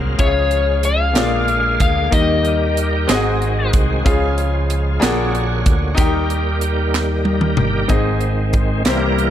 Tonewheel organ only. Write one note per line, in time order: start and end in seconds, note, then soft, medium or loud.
0.00 0.19 F#3 medium
0.00 0.18 A#3 soft
0.00 0.18 C4 medium
0.00 1.14 G#4 medium
0.00 2.10 F5 medium
0.18 1.14 C#3 medium
0.18 1.15 F3 medium
0.18 2.10 G#3 soft
1.16 2.12 D3 medium
1.16 3.07 A#3 medium
1.16 2.12 G#4 medium
2.11 4.03 D#3 medium
2.11 3.08 G3 medium
2.11 3.08 G4 medium
2.11 3.08 A#4 medium
3.07 4.04 G#3 medium
3.07 4.04 C4 medium
3.07 4.04 F#4 medium
3.07 5.95 G#4 medium
4.07 5.02 C#3 medium
4.07 5.02 F3 medium
4.07 5.02 G#3 medium
4.07 5.02 F4 medium
5.02 5.97 D3 medium
5.02 7.88 A#3 medium
5.02 5.98 F#4 medium
5.02 5.98 C#5 medium
5.98 7.88 D#3 medium
5.98 7.89 G3 medium
5.98 7.89 G4 medium
5.98 7.89 A#4 medium
7.89 8.82 D#3 soft
7.89 8.83 G#3 soft
7.89 8.83 C4 soft
8.85 9.30 E3 medium
8.85 9.30 G3 soft
8.85 9.30 A#3 medium
8.85 9.30 A#4 loud